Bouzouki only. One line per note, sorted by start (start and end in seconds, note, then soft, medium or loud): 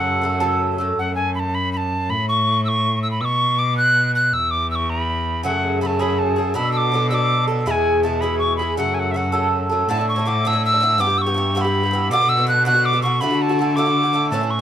0.00 0.20 C#3 medium
0.00 0.22 F#3 medium
0.00 0.23 A3 medium
0.00 0.24 A4 medium
0.21 0.41 C#3 soft
0.21 0.40 F#3 medium
0.21 0.39 A3 medium
0.21 0.39 A4 medium
0.40 0.79 C#3 medium
0.40 0.79 F#3 medium
0.40 0.80 A3 medium
0.40 0.78 A4 medium
0.78 0.99 F#3 medium
0.78 0.98 A3 soft
0.78 0.97 A4 medium
5.43 5.80 C#3 medium
5.43 5.81 F#3 medium
5.43 5.82 A3 medium
5.43 5.82 G#4 medium
5.81 6.00 C#3 medium
5.81 6.00 F#3 medium
5.81 5.99 A3 medium
5.81 5.98 G#4 medium
5.99 6.38 C#3 medium
5.99 6.38 F#3 medium
5.99 6.37 A3 medium
5.99 6.35 G#4 medium
6.36 6.53 F#3 soft
6.36 6.55 A3 soft
6.36 6.55 G#4 medium
6.54 6.91 B2 medium
6.54 6.92 F#3 medium
6.54 6.92 D4 medium
6.54 6.93 A4 medium
6.92 7.11 B2 medium
6.92 7.11 F#3 medium
6.92 7.11 D4 medium
6.92 7.09 A4 medium
7.11 7.49 B2 medium
7.11 7.49 F#3 medium
7.11 7.48 D4 medium
7.11 7.46 A4 medium
7.47 7.66 F#3 soft
7.47 7.67 D4 soft
7.47 7.66 A4 medium
7.66 8.02 B2 medium
7.66 8.03 G#3 medium
7.66 8.03 E4 medium
7.66 8.04 G#4 medium
8.03 8.22 B2 medium
8.03 8.22 G#3 medium
8.03 8.22 E4 medium
8.03 8.21 G#4 medium
8.22 8.60 B2 medium
8.22 8.60 G#3 medium
8.22 8.60 E4 medium
8.22 8.58 G#4 medium
8.59 8.77 G#3 soft
8.59 8.78 E4 soft
8.59 8.78 G#4 medium
8.77 9.13 C#3 medium
8.77 9.15 F#3 medium
8.77 9.15 A3 medium
8.77 9.16 A4 medium
9.14 9.33 C#3 medium
9.14 9.32 F#3 medium
9.14 9.32 A3 medium
9.14 9.31 A4 medium
9.32 9.71 C#3 medium
9.32 9.70 F#3 medium
9.32 9.70 A3 medium
9.32 9.68 A4 medium
9.69 9.89 F#3 soft
9.69 9.89 A3 medium
9.69 9.88 A4 medium
9.89 9.98 A2 medium
9.89 9.98 D3 medium
9.89 9.98 D4 medium
9.89 9.96 E4 medium
9.97 10.18 D3 soft
9.97 10.17 D4 soft
9.97 10.15 E4 medium
10.16 10.25 D3 medium
10.16 10.26 D4 medium
10.16 10.25 E4 medium
10.25 10.44 A2 medium
10.25 10.44 D3 medium
10.25 10.45 D4 medium
10.25 10.45 E4 medium
10.45 10.54 A2 medium
10.45 10.54 D3 medium
10.45 10.54 D4 medium
10.45 10.52 E4 medium
10.53 10.73 D3 soft
10.53 10.72 D4 soft
10.53 10.71 E4 medium
10.72 10.81 D3 soft
10.72 10.82 D4 soft
10.72 10.81 E4 medium
10.81 10.98 A2 medium
10.81 10.99 D3 medium
10.81 11.00 D4 medium
10.81 11.00 E4 medium
10.98 11.08 G2 medium
10.98 11.09 E3 medium
10.98 11.08 B3 medium
10.98 11.05 G4 loud
11.06 11.28 E3 medium
11.06 11.26 B3 medium
11.06 11.25 G4 medium
11.26 11.35 E3 soft
11.26 11.36 B3 soft
11.26 11.36 G4 medium
11.34 11.54 G2 medium
11.34 11.55 E3 medium
11.34 11.55 B3 medium
11.34 11.56 G4 medium
11.55 11.64 G2 medium
11.55 11.65 E3 medium
11.55 11.65 B3 medium
11.55 11.63 G4 medium
11.64 11.84 E3 soft
11.64 11.84 B3 soft
11.64 11.82 G4 medium
11.83 11.92 E3 soft
11.83 11.92 B3 soft
11.83 11.92 G4 soft
11.91 12.10 G2 medium
11.91 12.11 E3 medium
11.91 12.11 B3 medium
11.91 12.12 G4 medium
12.11 12.20 B2 medium
12.11 12.20 D3 medium
12.11 12.20 B3 medium
12.11 12.18 F#4 loud
12.19 12.39 D3 soft
12.19 12.37 B3 medium
12.19 12.36 F#4 medium
12.37 12.47 D3 soft
12.37 12.48 B3 medium
12.37 12.47 F#4 medium
12.47 12.64 B2 medium
12.47 12.65 D3 medium
12.47 12.66 B3 medium
12.47 12.66 F#4 medium
12.65 12.75 B2 medium
12.65 12.75 D3 medium
12.65 12.75 B3 medium
12.65 12.73 F#4 medium
12.74 12.94 D3 soft
12.74 12.93 B3 soft
12.74 12.92 F#4 medium
12.93 13.02 D3 soft
12.93 13.03 B3 soft
12.93 13.03 F#4 medium
13.02 13.20 B2 medium
13.02 13.21 D3 medium
13.02 13.22 B3 medium
13.02 13.22 F#4 medium
13.21 13.30 A2 medium
13.21 13.31 D3 medium
13.21 13.31 A3 medium
13.21 13.29 F#4 medium
13.30 13.51 D3 soft
13.30 13.50 A3 soft
13.30 13.48 F#4 medium
13.49 13.59 D3 soft
13.49 13.59 A3 medium
13.49 13.58 F#4 medium
13.59 13.76 A2 medium
13.59 13.77 D3 medium
13.59 13.77 A3 medium
13.59 13.78 F#4 medium
13.77 13.86 A2 medium
13.77 13.86 D3 medium
13.77 13.86 A3 medium
13.77 13.85 F#4 medium
13.86 14.05 D3 soft
13.86 14.04 A3 soft
13.86 14.02 F#4 medium
14.03 14.13 D3 soft
14.03 14.13 A3 soft
14.03 14.13 F#4 soft
14.13 14.31 A2 medium
14.13 14.32 D3 medium
14.13 14.32 A3 medium
14.13 14.33 F#4 medium
14.32 14.41 A2 medium
14.32 14.42 E3 medium
14.32 14.42 C#4 medium
14.32 14.40 E4 medium
14.41 14.61 E3 soft
14.41 14.59 C#4 medium
14.41 14.58 E4 medium